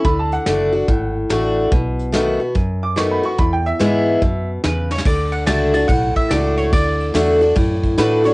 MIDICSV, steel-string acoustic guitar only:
0, 0, Header, 1, 2, 480
1, 0, Start_track
1, 0, Tempo, 417246
1, 59, Time_signature, 4, 2, 24, 8
1, 9593, End_track
2, 0, Start_track
2, 0, Title_t, "Steel-string acoustic guitar"
2, 0, Program_c, 0, 25
2, 55, Note_on_c, 0, 50, 89
2, 520, Note_off_c, 0, 50, 0
2, 533, Note_on_c, 0, 50, 86
2, 541, Note_on_c, 0, 57, 82
2, 548, Note_on_c, 0, 62, 101
2, 553, Note_on_c, 0, 66, 91
2, 821, Note_off_c, 0, 66, 0
2, 835, Note_on_c, 0, 66, 59
2, 836, Note_off_c, 0, 50, 0
2, 839, Note_off_c, 0, 57, 0
2, 843, Note_off_c, 0, 62, 0
2, 856, Note_on_c, 0, 62, 45
2, 1004, Note_off_c, 0, 66, 0
2, 1015, Note_off_c, 0, 62, 0
2, 1017, Note_on_c, 0, 45, 91
2, 1490, Note_on_c, 0, 50, 76
2, 1499, Note_on_c, 0, 57, 86
2, 1501, Note_on_c, 0, 62, 92
2, 1512, Note_on_c, 0, 66, 100
2, 1945, Note_off_c, 0, 45, 0
2, 1958, Note_off_c, 0, 50, 0
2, 1962, Note_off_c, 0, 57, 0
2, 1964, Note_off_c, 0, 62, 0
2, 1969, Note_off_c, 0, 66, 0
2, 1974, Note_on_c, 0, 47, 94
2, 2443, Note_on_c, 0, 51, 83
2, 2453, Note_on_c, 0, 57, 83
2, 2461, Note_on_c, 0, 59, 78
2, 2466, Note_on_c, 0, 66, 84
2, 2745, Note_off_c, 0, 66, 0
2, 2751, Note_off_c, 0, 51, 0
2, 2756, Note_off_c, 0, 57, 0
2, 2758, Note_on_c, 0, 66, 54
2, 2760, Note_off_c, 0, 59, 0
2, 2774, Note_on_c, 0, 59, 41
2, 2903, Note_off_c, 0, 47, 0
2, 2926, Note_off_c, 0, 66, 0
2, 2933, Note_on_c, 0, 42, 89
2, 2934, Note_off_c, 0, 59, 0
2, 3406, Note_on_c, 0, 51, 93
2, 3415, Note_on_c, 0, 57, 84
2, 3420, Note_on_c, 0, 59, 89
2, 3427, Note_on_c, 0, 66, 95
2, 3706, Note_off_c, 0, 66, 0
2, 3712, Note_off_c, 0, 51, 0
2, 3717, Note_off_c, 0, 57, 0
2, 3719, Note_off_c, 0, 59, 0
2, 3720, Note_on_c, 0, 66, 60
2, 3738, Note_on_c, 0, 59, 53
2, 3863, Note_off_c, 0, 42, 0
2, 3887, Note_off_c, 0, 66, 0
2, 3893, Note_on_c, 0, 40, 96
2, 3896, Note_off_c, 0, 59, 0
2, 4365, Note_on_c, 0, 52, 88
2, 4372, Note_on_c, 0, 56, 93
2, 4379, Note_on_c, 0, 59, 103
2, 4384, Note_on_c, 0, 64, 84
2, 4823, Note_off_c, 0, 40, 0
2, 4835, Note_off_c, 0, 52, 0
2, 4839, Note_off_c, 0, 56, 0
2, 4843, Note_off_c, 0, 59, 0
2, 4845, Note_off_c, 0, 64, 0
2, 4855, Note_on_c, 0, 47, 83
2, 5320, Note_off_c, 0, 47, 0
2, 5334, Note_on_c, 0, 49, 91
2, 5800, Note_off_c, 0, 49, 0
2, 5820, Note_on_c, 0, 50, 97
2, 6276, Note_off_c, 0, 50, 0
2, 6290, Note_on_c, 0, 50, 83
2, 6294, Note_on_c, 0, 57, 88
2, 6301, Note_on_c, 0, 62, 96
2, 6306, Note_on_c, 0, 66, 88
2, 6592, Note_off_c, 0, 66, 0
2, 6594, Note_off_c, 0, 50, 0
2, 6596, Note_off_c, 0, 57, 0
2, 6600, Note_off_c, 0, 62, 0
2, 6606, Note_on_c, 0, 66, 63
2, 6622, Note_on_c, 0, 62, 50
2, 6770, Note_off_c, 0, 66, 0
2, 6778, Note_off_c, 0, 62, 0
2, 6781, Note_on_c, 0, 45, 87
2, 7274, Note_on_c, 0, 57, 87
2, 7277, Note_on_c, 0, 62, 90
2, 7283, Note_on_c, 0, 66, 92
2, 7707, Note_off_c, 0, 45, 0
2, 7730, Note_off_c, 0, 57, 0
2, 7731, Note_off_c, 0, 62, 0
2, 7734, Note_off_c, 0, 66, 0
2, 7744, Note_on_c, 0, 50, 93
2, 8198, Note_off_c, 0, 50, 0
2, 8212, Note_on_c, 0, 50, 87
2, 8219, Note_on_c, 0, 57, 98
2, 8223, Note_on_c, 0, 62, 96
2, 8228, Note_on_c, 0, 66, 89
2, 8511, Note_off_c, 0, 66, 0
2, 8515, Note_off_c, 0, 50, 0
2, 8519, Note_off_c, 0, 57, 0
2, 8520, Note_off_c, 0, 62, 0
2, 8525, Note_on_c, 0, 66, 58
2, 8545, Note_on_c, 0, 62, 49
2, 8689, Note_off_c, 0, 66, 0
2, 8691, Note_on_c, 0, 45, 96
2, 8699, Note_off_c, 0, 62, 0
2, 9175, Note_on_c, 0, 50, 88
2, 9183, Note_on_c, 0, 57, 91
2, 9190, Note_on_c, 0, 62, 93
2, 9192, Note_on_c, 0, 66, 90
2, 9464, Note_off_c, 0, 66, 0
2, 9476, Note_off_c, 0, 50, 0
2, 9478, Note_on_c, 0, 66, 66
2, 9480, Note_off_c, 0, 57, 0
2, 9484, Note_off_c, 0, 62, 0
2, 9498, Note_on_c, 0, 62, 54
2, 9593, Note_off_c, 0, 45, 0
2, 9593, Note_off_c, 0, 62, 0
2, 9593, Note_off_c, 0, 66, 0
2, 9593, End_track
0, 0, End_of_file